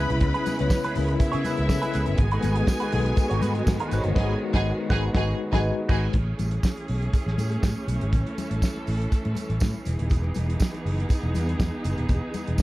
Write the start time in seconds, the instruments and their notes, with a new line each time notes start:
Already playing: tine electric piano C#3 C#4 E4 G#4 B4, string section C#3 G#3 B3 E4 B4 B5, clean electric guitar E4
0.00 clean electric guitar G#4
0.10 fingered electric bass C2, muted clean electric guitar stroke, closed hi-hat, low conga
0.20 fingered electric bass C#2, muted clean electric guitar stroke, kick, closed hi-hat, muted conga, low conga
0.34 clean electric guitar E4 G#4 B4, closed hi-hat, muted conga
0.46 clean electric guitar E4 G#4 B4, closed hi-hat, tambourine, high conga
0.59 fingered electric bass C#2, tine electric piano C#3 C#4 E4 C#5, muted clean electric guitar stroke, closed hi-hat
0.70 muted clean electric guitar stroke, kick, snare, tambourine, muted conga
0.84 clean electric guitar E4 G#4 B4, closed hi-hat, muted conga
0.95 fingered electric bass C#2, tine electric piano C#3 C#4 E4 A#4, muted clean electric guitar stroke, open hi-hat, tambourine, low conga
1.04 tine electric piano B4
1.08 muted clean electric guitar stroke, closed hi-hat
1.19 string section E4 E5, muted clean electric guitar stroke, muted fingered electric bass stroke, kick, closed hi-hat, tambourine
1.32 fingered electric bass C#3, clean electric guitar E4 G#4 C#5, closed hi-hat, muted conga
1.43 tine electric piano C#3 C#4 E4 B4, clean electric guitar E4 G#4 B4, closed hi-hat, tambourine, high conga
1.57 fingered electric bass C#2, muted clean electric guitar stroke, closed hi-hat
1.69 fingered electric bass C#3, tine electric piano C#3 C#4 E4 A4, muted clean electric guitar stroke, kick, snare, tambourine, high conga
1.78 tine electric piano B4, clean electric guitar B4
1.82 clean electric guitar E4 G#4, closed hi-hat, muted conga
1.93 fingered electric bass C#2, clean electric guitar E4 G#4 B4, closed hi-hat, tambourine
2.06 fingered electric bass G1, muted clean electric guitar stroke, closed hi-hat, low conga
2.18 fingered electric bass G#1, string section D#3 F#4 G#4 G#5, muted clean electric guitar stroke, kick, closed hi-hat, muted conga, low conga
2.31 tine electric piano G#3 D#4 F#4 A4, clean electric guitar D#4 F#4 B4, closed hi-hat
2.40 fingered electric bass G#1, clean electric guitar D#4 F#4, tine electric piano B4, closed hi-hat, tambourine, high conga
2.45 clean electric guitar B4
2.55 muted clean electric guitar stroke, closed hi-hat
2.67 muted clean electric guitar stroke, kick, snare, tambourine, muted conga
2.80 clean electric guitar D#4 F#4 B4, closed hi-hat
2.92 fingered electric bass B1, tine electric piano G#3 D#4 F#4 A4, muted clean electric guitar stroke, open hi-hat, low conga
3.00 tine electric piano B4
3.05 muted clean electric guitar stroke, closed hi-hat
3.16 muted clean electric guitar stroke, kick, closed hi-hat, tambourine, muted conga
3.30 fingered electric bass G#1, clean electric guitar D#4 F#4 C#5, closed hi-hat
3.40 fingered electric bass G#2, clean electric guitar D#4 F#4 B4, closed hi-hat, tambourine, high conga
3.55 muted clean electric guitar stroke, closed hi-hat
3.67 fingered electric bass G#2, tine electric piano G#3 D#4 F#4 B4, muted clean electric guitar stroke, kick, snare, tambourine, high conga
3.79 clean electric guitar D#4 F#4 B4, closed hi-hat, muted conga
3.91 fingered electric bass G#1, tine electric piano G#3 D#4 F#4 C5, clean electric guitar D#4 F#4 B4, closed hi-hat, tambourine
3.99 tine electric piano C#5
4.03 fingered electric bass G1, muted clean electric guitar stroke, closed hi-hat, low conga
4.15 fingered electric bass G#1, tine electric piano G#3 D#4 F#4, clean electric guitar D#4 F#4 B4, string section G#4 G#5, kick, snare, crash
4.53 fingered electric bass G#1, tine electric piano G#3 D#4 F#4 B4, clean electric guitar D#4 F#4 B4, string section G#4 G#5, kick, snare
4.89 fingered electric bass G#1, tine electric piano G#3 D#4 F#4 B4, clean electric guitar D#4 F#4 B4, string section G#4 G#5, kick, snare
5.13 fingered electric bass G#1, tine electric piano G#3 D#4 F#4 B4, clean electric guitar D#4 F#4, string section G#4 G#5, kick, snare
5.52 fingered electric bass G#1, tine electric piano G#3 D#4 F#4 B4 D#5, clean electric guitar D#4 F#4 B4, string section G#4 G#5, kick, snare
5.89 fingered electric bass G#1, clean electric guitar D#4 F#4 B4, string section G#4 G#5, kick, crash
6.13 fingered electric bass A1, string section E3 A3 C#4 G#4, kick, closed hi-hat, muted conga, low conga
6.39 fingered electric bass A1, closed hi-hat, tambourine, high conga
6.51 closed hi-hat
6.63 kick, snare, tambourine, muted conga
6.77 closed hi-hat
6.88 fingered electric bass B1, open hi-hat
7.02 closed hi-hat
7.13 kick, closed hi-hat, tambourine
7.26 fingered electric bass A1, snare
7.38 fingered electric bass A2, closed hi-hat, tambourine, high conga
7.52 closed hi-hat
7.63 fingered electric bass A2, kick, snare, tambourine, high conga
7.76 muted conga
7.88 fingered electric bass B1, closed hi-hat, tambourine, high conga
8.01 fingered electric bass G#1, closed hi-hat, low conga
8.12 fingered electric bass A1, string section A4, kick, closed hi-hat, tambourine, muted conga, low conga
8.27 closed hi-hat, muted conga
8.38 closed hi-hat, tambourine, high conga
8.51 fingered electric bass A1, closed hi-hat
8.62 kick, snare, tambourine, muted conga
8.76 muted conga
8.87 fingered electric bass A1, open hi-hat, tambourine
9.02 closed hi-hat
9.12 muted fingered electric bass stroke, kick, closed hi-hat, tambourine, muted conga
9.25 fingered electric bass A2, closed hi-hat, muted conga
9.35 closed hi-hat, tambourine, high conga
9.50 fingered electric bass A1, closed hi-hat
9.60 fingered electric bass A2, kick, snare, tambourine, muted conga, high conga
9.74 muted conga
9.85 fingered electric bass E1, string section B3 D#4 G#4, closed hi-hat, tambourine, high conga
9.99 fingered electric bass D#1, closed hi-hat, low conga
10.10 fingered electric bass E1, kick, closed hi-hat, tambourine, muted conga, low conga
10.24 muted conga
10.34 fingered electric bass E1, closed hi-hat, tambourine, high conga
10.50 closed hi-hat
10.60 kick, snare, tambourine, muted conga
10.74 closed hi-hat, muted conga
10.85 fingered electric bass F#1, open hi-hat
11.00 closed hi-hat
11.09 kick, closed hi-hat, tambourine, muted conga
11.23 fingered electric bass E1, muted conga
11.34 fingered electric bass E2, closed hi-hat, tambourine, high conga
11.49 closed hi-hat
11.60 fingered electric bass E2, kick, snare, tambourine, muted conga, high conga
11.84 fingered electric bass F#1, closed hi-hat, tambourine, high conga
11.97 fingered electric bass D#1, closed hi-hat, low conga
12.09 fingered electric bass E1, kick, closed hi-hat, tambourine, low conga
12.34 closed hi-hat, tambourine, high conga
12.47 fingered electric bass E1, closed hi-hat
12.58 kick, tambourine